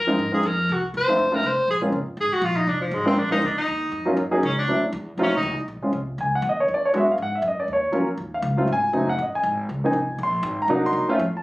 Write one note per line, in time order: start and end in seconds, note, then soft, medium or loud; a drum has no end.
0.00 0.17 F#2 medium
0.00 0.32 A#4 medium
0.07 0.17 F3 medium
0.07 0.17 G#3 medium
0.07 0.17 C4 medium
0.07 0.17 D#4 medium
0.07 0.17 F4 medium
0.19 0.32 G#2 medium
0.32 0.42 F3 medium
0.32 0.42 G#3 medium
0.32 0.42 C4 medium
0.32 0.42 D#4 medium
0.32 0.42 F4 medium
0.32 0.48 G#4 medium
0.32 muted upright bass stroke soft
0.43 0.68 F2 loud
0.43 0.74 A#4 medium
0.69 0.93 C2 medium
0.69 0.85 F#4 medium
0.94 1.07 D#2 medium
0.94 1.36 C5 medium
1.08 1.18 F3 medium
1.08 1.18 A3 medium
1.08 1.18 C4 medium
1.08 1.18 D#4 medium
1.08 1.18 F4 medium
1.19 1.42 F2 medium
1.32 1.42 F3 medium
1.32 1.42 A3 medium
1.32 1.42 C4 medium
1.32 1.42 D#4 medium
1.32 1.42 F4 medium
1.32 1.48 A#4 loud
1.43 1.57 C2 medium
1.43 1.70 C5 loud
1.59 muted upright bass stroke soft
1.68 1.92 A#1 medium
1.68 1.78 G#4 medium
1.81 1.92 G#3 medium
1.81 1.92 A#3 medium
1.81 1.92 C4 medium
1.81 1.92 C#4 medium
1.81 1.92 F4 medium
1.92 2.06 F#1 medium
2.06 muted upright bass stroke soft
2.17 2.31 G#1 medium
2.17 2.34 G#4 loud
2.31 2.46 F#4 medium
2.31 muted upright bass stroke soft
2.41 2.67 A#1 loud
2.41 2.58 F4 medium
2.57 2.70 D#4 medium
2.67 2.91 F1 medium
2.67 2.80 D4 medium
2.81 2.96 F3 medium
2.91 3.16 G#1 medium
2.91 3.07 G#3 medium
3.05 3.16 G#3 medium
3.05 3.16 A#3 medium
3.05 3.16 C4 medium
3.05 3.20 C4 medium
3.05 3.16 D4 medium
3.05 3.16 F4 medium
3.16 3.41 A#1 medium
3.16 3.31 D4 medium
3.30 3.41 G#3 medium
3.30 3.41 A#3 medium
3.30 3.41 C4 medium
3.30 3.41 D4 medium
3.30 3.47 D#4 loud
3.30 3.41 F4 medium
3.42 3.55 D2 loud
3.42 3.57 D4 medium
3.57 4.14 D#4 medium
3.57 muted upright bass stroke soft
3.68 3.91 D#2 medium
3.92 4.16 F2 medium
4.05 4.16 F#3 medium
4.05 4.16 A#3 medium
4.05 4.16 C#4 medium
4.05 4.16 D#4 medium
4.05 4.16 F4 medium
4.17 4.41 F#2 loud
4.31 4.41 F#3 medium
4.31 4.41 A#3 medium
4.31 4.41 C#4 medium
4.31 4.41 D#4 medium
4.31 4.41 G#4 loud
4.43 4.67 C#2 loud
4.43 4.57 C#4 medium
4.58 4.81 D4 medium
4.67 4.92 D2 medium
4.67 4.81 F#3 medium
4.67 4.81 A3 medium
4.67 4.81 C4 medium
4.67 4.81 D4 medium
4.67 4.81 E4 medium
4.92 5.17 E2 loud
5.17 5.26 F2 medium
5.17 5.31 F#3 medium
5.17 5.31 A3 medium
5.17 5.31 C4 medium
5.17 5.31 D#4 medium
5.17 5.31 F4 loud
5.23 5.34 D#2 medium
5.23 5.34 C#4 medium
5.35 5.42 C2 medium
5.35 5.57 D#4 medium
5.43 5.51 D#2 loud
5.51 5.59 C2 medium
5.60 5.67 A1 medium
5.68 5.81 A#1 medium
5.82 5.92 G#3 medium
5.82 5.92 C4 medium
5.82 5.92 C#4 medium
5.82 5.92 F4 medium
5.82 muted upright bass stroke soft
5.93 6.17 C2 medium
6.18 6.41 C#2 medium
6.18 6.33 G#5 medium
6.35 6.44 F#5 medium
6.42 6.67 D#2 loud
6.49 6.60 D#5 medium
6.60 6.69 C#5 medium
6.68 6.92 E2 medium
6.74 6.85 D5 medium
6.85 6.94 C#5 medium
6.93 7.17 F#2 medium
6.93 7.06 G#3 medium
6.93 7.06 B3 medium
6.93 7.06 D4 medium
6.93 7.06 F#4 medium
6.97 7.09 E5 medium
7.11 7.20 F5 medium
7.18 7.42 G#2 medium
7.22 7.34 F#5 medium
7.35 7.44 E5 medium
7.42 7.67 F#2 loud
7.48 7.59 D#5 medium
7.60 7.69 D5 medium
7.68 7.92 D#2 medium
7.73 8.07 C#5 medium
7.92 8.06 F2 medium
7.92 8.05 F#3 medium
7.92 8.05 A#3 medium
7.92 8.06 C#4 medium
7.92 8.06 F4 medium
8.08 muted upright bass stroke soft
8.17 8.42 D#2 medium
8.34 8.67 F5 medium
8.42 8.67 C#2 loud
8.57 8.67 F#3 medium
8.57 8.67 A3 medium
8.57 8.67 C4 medium
8.57 8.67 F4 medium
8.67 8.92 G#1 medium
8.73 9.07 G#5 loud
8.93 9.17 F#1 medium
8.93 9.06 F#3 medium
8.93 9.06 A3 medium
8.93 9.06 C4 medium
8.93 9.06 D#4 medium
9.09 9.19 F#5 medium
9.18 9.32 A1 medium
9.18 9.34 D#5 medium
9.32 9.57 G#5 medium
9.32 muted upright bass stroke soft
9.43 9.68 G#1 loud
9.69 9.92 C#2 medium
9.84 9.93 F3 medium
9.84 9.93 A#3 medium
9.84 9.93 C4 medium
9.84 9.93 D#4 medium
9.84 10.18 G#5 medium
9.93 10.18 C2 medium
10.18 10.42 A#1 medium
10.23 10.58 C6 medium
10.43 10.67 G#1 loud
10.62 10.70 A#5 medium
10.68 10.92 C2 medium
10.68 11.06 F#3 medium
10.68 11.06 A#3 medium
10.68 11.06 D4 medium
10.68 11.06 D#4 medium
10.75 10.86 F#5 medium
10.86 11.08 C6 loud
10.93 11.18 F#2 medium
11.09 11.18 A3 medium
11.09 11.18 C4 medium
11.09 11.19 C#4 medium
11.09 11.19 F4 loud
11.19 11.32 F2 loud
11.33 11.43 A5 medium
11.33 muted upright bass stroke soft